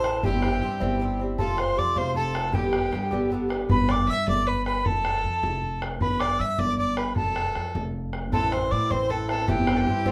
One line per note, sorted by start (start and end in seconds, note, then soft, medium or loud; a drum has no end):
0.00 0.25 A1 medium
0.00 0.23 E4 medium
0.00 0.20 C5 loud
0.04 0.24 E3 soft
0.04 0.24 A3 soft
0.04 0.17 A5 medium
0.04 bodhran medium
0.17 0.26 A5 medium
0.23 0.60 G1 medium
0.23 0.43 G2 medium
0.23 0.43 G3 medium
0.23 0.43 C4 medium
0.23 0.41 E4 medium
0.23 1.16 G4 medium
0.23 1.21 G5 loud
0.23 bodhran medium
0.42 0.62 G3 soft
0.42 0.62 C4 soft
0.42 0.62 E4 medium
0.42 bodhran medium
0.61 0.81 G2 medium
0.61 0.80 G2 medium
0.61 0.81 G3 medium
0.61 0.80 C4 medium
0.61 0.79 E4 medium
0.80 1.39 G1 medium
0.80 0.98 G2 medium
0.80 1.00 G3 medium
0.80 1.01 C4 medium
0.80 1.00 E4 medium
0.80 bodhran medium
1.00 1.19 G2 medium
1.00 1.20 G3 medium
1.00 1.20 C4 medium
1.00 1.18 E4 medium
1.19 1.39 G3 soft
1.19 1.40 C4 medium
1.19 1.39 E4 medium
1.38 1.75 F1 medium
1.38 1.58 C3 medium
1.38 1.59 F3 medium
1.38 1.58 A3 medium
1.38 1.56 F4 medium
1.38 1.61 A4 medium
1.38 1.57 A5 loud
1.38 bodhran medium
1.57 1.76 F3 soft
1.57 1.77 A3 medium
1.57 1.77 F4 medium
1.57 1.80 C5 medium
1.57 1.80 C6 medium
1.57 bodhran medium
1.76 1.96 F2 medium
1.76 1.96 C3 medium
1.76 1.96 F3 medium
1.76 1.95 A3 medium
1.76 1.95 F4 medium
1.76 1.99 D5 medium
1.76 1.99 D6 medium
1.96 2.55 F1 medium
1.96 2.13 C3 medium
1.96 2.14 F3 medium
1.96 2.15 A3 medium
1.96 2.16 F4 medium
1.96 2.15 C5 medium
1.96 2.16 C6 loud
1.96 bodhran medium
2.14 2.34 C3 medium
2.14 2.35 F3 medium
2.14 2.34 A3 medium
2.14 2.52 A4 medium
2.14 2.56 A5 medium
2.14 bodhran soft
2.18 2.33 F4 medium
2.34 2.53 F3 soft
2.34 2.54 A3 soft
2.34 2.54 F4 medium
2.34 bodhran medium
2.53 2.91 G1 medium
2.53 2.73 G2 medium
2.53 2.73 D3 medium
2.53 2.73 B3 medium
2.53 3.28 G4 medium
2.53 2.71 G4 medium
2.53 3.32 G5 medium
2.53 bodhran medium
2.72 2.92 D3 soft
2.72 2.93 B3 medium
2.72 2.92 G4 medium
2.72 bodhran medium
2.92 3.12 G2 medium
2.92 3.11 G2 medium
2.92 3.11 D3 medium
2.92 3.11 B3 medium
2.92 3.10 G4 medium
2.92 bodhran medium
3.11 3.67 G1 medium
3.11 3.29 G2 medium
3.11 3.30 D3 medium
3.11 3.31 B3 medium
3.11 3.31 G4 medium
3.11 bodhran medium
3.30 3.50 G2 medium
3.30 3.51 D3 medium
3.30 3.50 B3 medium
3.30 3.48 G4 medium
3.30 bodhran soft
3.49 3.71 D3 soft
3.49 3.70 B3 soft
3.49 3.69 G4 medium
3.49 bodhran medium
3.69 4.06 G1 loud
3.69 3.90 B4 medium
3.69 3.93 B5 loud
3.69 bodhran loud
3.89 4.08 D5 medium
3.89 4.12 D6 loud
3.89 bodhran medium
4.08 4.26 G2 medium
4.08 4.27 E5 medium
4.08 4.28 E6 loud
4.28 4.86 G1 medium
4.28 4.48 D5 loud
4.28 4.50 D6 loud
4.28 bodhran medium
4.46 4.65 B4 medium
4.46 4.67 B5 loud
4.66 4.86 B4 medium
4.66 4.88 B5 loud
4.66 bodhran medium
4.85 5.22 F1 loud
4.85 5.82 A4 medium
4.85 5.83 A5 loud
4.85 bodhran medium
5.05 bodhran medium
5.24 5.42 F2 medium
5.43 6.01 F1 medium
5.43 bodhran medium
5.63 bodhran soft
5.82 bodhran medium
6.01 6.37 G1 loud
6.01 6.23 B4 medium
6.01 6.21 B5 loud
6.01 bodhran medium
6.20 6.42 D5 medium
6.20 6.41 D6 loud
6.20 bodhran medium
6.39 6.58 G2 medium
6.39 6.61 E5 medium
6.39 6.60 E6 medium
6.59 7.17 G1 medium
6.59 6.78 D5 loud
6.59 6.78 D6 loud
6.59 bodhran medium
6.78 6.99 D5 medium
6.78 6.96 D6 medium
6.78 bodhran soft
6.97 7.16 B4 medium
6.97 7.16 B5 medium
6.97 bodhran medium
7.16 7.53 F1 loud
7.16 7.82 A4 medium
7.16 7.82 A5 loud
7.16 bodhran medium
7.36 bodhran medium
7.55 7.74 F2 medium
7.55 bodhran medium
7.75 8.33 F1 medium
7.75 bodhran medium
7.94 bodhran soft
8.13 bodhran medium
8.32 8.69 A1 medium
8.32 8.52 A2 medium
8.32 8.52 E3 medium
8.32 8.52 C4 medium
8.32 8.50 E4 medium
8.32 8.54 A4 loud
8.32 8.51 A5 loud
8.32 bodhran medium
8.51 8.70 E3 soft
8.51 8.72 C4 medium
8.51 8.71 E4 medium
8.51 8.73 C5 medium
8.51 8.73 C6 loud
8.51 bodhran medium
8.70 8.90 A2 medium
8.70 8.90 E3 medium
8.70 8.90 C4 medium
8.70 8.89 E4 medium
8.70 8.92 D5 medium
8.70 8.93 D6 loud
8.90 9.50 A1 medium
8.90 9.07 A2 medium
8.90 9.09 E3 medium
8.90 9.10 C4 medium
8.90 9.10 E4 medium
8.90 9.12 C5 medium
8.90 9.10 C6 loud
8.90 bodhran medium
9.09 9.29 A2 medium
9.09 9.29 E3 medium
9.09 9.29 C4 medium
9.09 9.27 E4 medium
9.09 9.29 A4 medium
9.09 9.16 A5 medium
9.09 bodhran soft
9.28 9.47 E3 soft
9.28 9.48 C4 soft
9.28 9.48 E4 medium
9.28 9.49 A4 medium
9.28 9.48 A5 medium
9.28 bodhran medium
9.47 9.84 G1 loud
9.47 9.67 G2 medium
9.47 9.68 E3 medium
9.47 9.67 C4 medium
9.47 9.65 E4 medium
9.47 9.78 G4 medium
9.47 10.12 G5 loud
9.47 bodhran loud
9.67 9.86 E3 soft
9.67 9.87 C4 medium
9.67 9.86 E4 medium
9.67 bodhran medium
9.76 10.09 G4 medium
9.76 9.82 A4 medium
9.86 10.06 G2 medium
9.86 10.05 G2 medium
9.86 10.06 E3 medium
9.86 10.05 C4 medium
9.86 10.04 E4 medium
10.05 10.12 G1 medium
10.05 10.12 G2 medium
10.05 10.12 E3 medium
10.05 10.12 C4 medium
10.05 10.12 E4 medium
10.05 10.12 F4 medium
10.05 bodhran loud